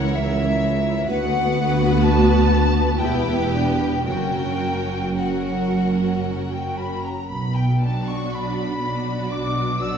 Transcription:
Already playing: C#2 E3 E4 A#4 C#5 F#5
0.15 E5
1.06 D2 B3 F#4 B4 F#5
2.01 A5
2.99 E1 E2 B3 E4 G4 B4 G5
3.52 D4
4.05 F#1 F#2 F#3 C#4 F#4 A#4 G5
5.17 F#3 C#4 F#4 A#4 F#5
6.51 G5
6.77 B5
7.01 A#5
7.28 B1 B2 B5
7.54 G5
7.80 F#3 D4 F#4 D5 A5
8.07 C#6
8.31 B1 B2 B5
8.83 F#3 D4 F#4 D5
9.30 B1 B2 D6
9.79 F#3 D4 F#4 D5 E6

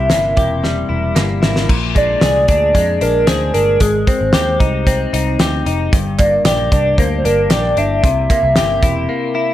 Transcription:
Already playing: C2 C3 G3 E4 G4 E5
0.10 G1 A#3, snare, clap, closed hi-hat
0.37 E1 G4, kick, closed hi-hat
0.64 G3, snare
0.89 E1 E4
1.15 G1 A#3, snare, clap
1.42 G#1 E4, snare
1.56 snare
1.69 A#1 A#2, kick, crash
1.95 G#3 D5, kick, closed hi-hat
2.21 C2 G#4, snare, closed hi-hat
2.48 D2 D4 D5, kick, closed hi-hat
2.75 F2 G#3, kick, closed hi-hat
3.01 A#1 D4 A#4, closed hi-hat
3.27 D2 G#4 C5, snare, closed hi-hat
3.54 G1 D4 A#4, closed hi-hat
3.80 G#1 G#3 G#4, kick, closed hi-hat
4.07 C4 C5, kick, closed hi-hat
4.21 G#1
4.33 D#2 G4, snare, closed hi-hat
4.60 C2 D#4, kick, closed hi-hat
4.87 C4, kick, closed hi-hat
5.13 C2 D#4, closed hi-hat
5.39 D2 G4, snare, closed hi-hat
5.66 F1 D#4, closed hi-hat
5.93 G1 G2, kick, closed hi-hat
6.18 A#3 D5, kick, clap, closed hi-hat
6.45 A#1 G4 D5, snare, clap, closed hi-hat
6.72 C2 D4 D5, kick, closed hi-hat
6.98 D2 A#3 C5, kick, closed hi-hat
7.18 C5
7.24 G1 D4 A#4, closed hi-hat
7.50 A#1 G4 D5, snare, clap, closed hi-hat
7.77 G1 D4 E5, closed hi-hat
8.03 C2 C3, kick, closed hi-hat
8.30 A#3, kick, clap, closed hi-hat
8.43 C2
8.56 G1 G4, snare, clap, closed hi-hat
8.82 E1 E4, kick, closed hi-hat
9.09 A#3
9.35 E4

